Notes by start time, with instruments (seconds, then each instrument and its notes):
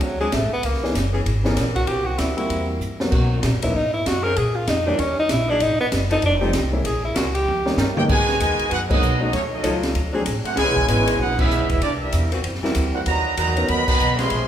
0.01 upright bass D2, tenor saxophone F#3, kick, ride
0.20 saxophone section F#3 C4 D4 G#4, tenor saxophone G#3
0.32 upright bass A1, tenor saxophone A3, kick, snare, hi-hat pedal, ride
0.50 tenor saxophone B3, muted upright bass stroke
0.63 upright bass C#2, tenor saxophone A#3, kick, ride
0.74 snare
0.81 upright piano E3 B3 C#4 D#4 G#4, muted upright bass stroke, snare
0.95 upright bass F#1, kick, snare, hi-hat pedal, ride
1.13 saxophone section E3 B3 C#4 G#4
1.26 upright bass G#1, kick, ride
1.44 upright piano E3 B3 C#4 D#4 G#4, saxophone section E3 B3 C#4 A#4, snare
1.57 upright bass A#1, kick, snare, hi-hat pedal, ride
1.75 tenor saxophone F#4, kick, ride
1.87 upright bass C2, saxophone section E3 A#3 C4 F#4, tenor saxophone G4, ride
2.06 tenor saxophone F#4
2.18 upright bass D2, tenor saxophone E4, kick, snare, hi-hat pedal, ride
2.37 upright piano G3 A#3 C4 E4 F#4, tenor saxophone E4, ride
2.50 upright bass E2, kick, ride
2.80 upright bass G2, hi-hat pedal
3.00 upright piano F#3 A#3 B3 C#4 F#4, snare
3.11 upright bass B2, saxophone section D#3 F#4, kick, crash
3.43 upright bass A#2, snare, hi-hat pedal, ride
3.53 upright bass F#2
3.62 upright bass D#2, upright piano F#3 A#3 B3 C#4 D#4, tenor saxophone E4, ride
3.75 upright bass G#2, tenor saxophone D#4, kick
3.93 tenor saxophone E4
4.06 upright bass F#2, tenor saxophone F#4, kick, snare, hi-hat pedal, ride
4.23 saxophone section D#3 C4 C#4 G#4, tenor saxophone A#4
4.36 upright bass A#2, tenor saxophone G#4, kick, ride
4.56 tenor saxophone F4
4.67 upright bass F2, tenor saxophone D#4, kick, snare, hi-hat pedal, ride
4.86 saxophone section E3 C#4 D#4 G4, upright piano E3 G3 A#3 C#4 D#4, tenor saxophone D4
4.98 upright bass D#2, tenor saxophone C#4, kick, ride
5.19 tenor saxophone D#4
5.29 upright bass A#1, tenor saxophone E4, kick, snare, hi-hat pedal, ride
5.48 saxophone section F#3 B3 D#4 G#4, tenor saxophone D4
5.60 upright bass G#1, tenor saxophone D#4, kick, ride
5.78 tenor saxophone B3, muted upright bass stroke
5.91 upright bass F#1, kick, snare, hi-hat pedal, ride
6.09 saxophone section F3 C4 D#4 A4, tenor saxophone D#4, ride
6.22 upright bass F1, tenor saxophone D4, kick, ride
6.41 upright piano F3 G3 A3 C4 D#4, saxophone section F3 C4 D#4 G4
6.53 upright bass C2, kick, snare, hi-hat pedal, ride
6.71 upright piano E3 G#3 A#3 C#4 E4
6.85 upright bass A#1, tenor saxophone G#4, kick, ride
7.04 tenor saxophone E4
7.14 upright bass C#2, saxophone section G#3 C#4 E4 A#4, tenor saxophone F#4, kick, snare, hi-hat pedal, ride
7.34 tenor saxophone G4, ride
7.45 upright bass D#2, high tom
7.65 upright piano D#3 G3 A#3 C#4 D#4, snare
7.77 upright bass G2, saxophone section G3 C#4 D#4 A#4, snare, hi-hat pedal
7.94 upright piano F#3 G#3 A#3 B3 D#4, trombone section A#3 C#4 G4, trumpet section D#4 A#4 C#5 G5, mid tom
8.06 upright bass G#2, trombone section B2 D#3 G#3, trumpet section F#4 B4 D#5 G#5, kick, crash
8.29 snare
8.38 upright bass D#2, trombone section B2 D#3 G#3, trumpet section F#4 B4 D#5 G#5, kick, hi-hat pedal, ride
8.59 muted upright bass stroke, ride
8.69 upright bass F#2, trombone section B3 D#4 F#4, trumpet section D#4 G#4 B4 F#5, kick, ride
8.89 trombone section F#3 B3 D#4, upright piano F#3 G#3 A#3 B3 D#4, trumpet section B3 F#4 G#4 D#5, kick, crash
9.00 upright bass B1, hi-hat pedal
9.20 trombone section F#3 B3 D#4, upright piano F#3 A3 C#4 D#4 F#4, trumpet section B3 F#4 G#4 D#5
9.32 upright bass D#2, trombone section F#3 A3 C#4, trumpet section A3 D#4 F#4 C#5, kick, ride
9.51 trombone section F#3 A3 D#4, trumpet section C#4 F#4 A4 D#5
9.63 upright bass C#2, saxophone section F#3 C#4 D#4 A4, upright piano F#3 A3 C#4 D#4 F4, kick, hi-hat pedal, ride
9.83 snare, ride
9.95 upright bass D2, kick, ride
10.13 saxophone section F#3 C4 D4 G#4, upright piano F#3 A3 C4 D4 G#4
10.26 upright bass A1, kick, hi-hat pedal, ride
10.44 trombone section A3 C4 F#4, trumpet section D4 A4 C5 F#5, muted upright bass stroke, ride
10.55 upright bass C#2, trombone section B2 E3 G#3, saxophone section E3 B3 C#4 G#4, trumpet section E4 B4 C#5 G#5, kick, snare, ride
10.66 upright bass B1
10.76 upright bass G#1, kick
10.87 upright bass G#1, trombone section B2 E3 G#3, upright piano E3 B3 C#4 G#4 D#5, trumpet section E4 B4 C#5 G#5, hi-hat pedal, ride
11.07 ride
11.19 upright bass A#1, trumpet section D#4 G#4 B4 F#5, trombone section F#4, kick
11.38 saxophone section E3 B3 C#4 B4, trombone section G#3 B3 E4, trumpet section C#4 G#4 B4 E5, kick, crash
11.49 upright bass B1, hi-hat pedal
11.60 upright bass G#1
11.70 upright bass E1, trombone section G#3 B3 E4, trumpet section C#4 G#4 B4 E5, kick, ride
11.82 upright bass C2, trumpet section A#3 E4 G4 D5, trombone section D4, kick, ride
12.02 trombone section G3 A#3 E4, trumpet section C4 G4 A#4 E5
12.12 upright bass E2, kick, hi-hat pedal, ride
12.32 saxophone section E3 A#3 C4 F#4, ride
12.44 upright bass F#2, kick, ride
12.55 snare
12.62 saxophone section E3 A#3 C4 E4, upright piano G3 C4 E4 F#4 A#4, muted upright bass stroke, snare
12.75 upright bass D2, kick, hi-hat pedal, ride
12.93 trombone section G3 A#3 F#4, trumpet section E4 A#4 C5 F#5
13.05 upright bass D#2, trombone section A#2 D#3 F#3, trumpet section F#4 B4 D#5 A#5, kick, ride
13.37 upright bass E2, trombone section A#2 D#3 F#3, saxophone section D#3 F#3 F#4 B4, trumpet section F#4 B4 D#5 A#5, kick, hi-hat pedal, ride
13.57 upright piano B3 C#4 D#4 F#4 A#4, ride
13.67 upright bass D#2, trombone section D#3 F#3 B3, trumpet section F#4 A#4 D#5 B5, kick, ride
13.87 trombone section D#3 F#3 B3, trumpet section F#4 D#5 A#5 B5, kick, crash
13.99 upright bass B1, hi-hat pedal
14.18 trombone section C3 F3 G#3, trumpet section G#4 C#5 F5 C6, snare, ride
14.30 upright bass A#1, kick, ride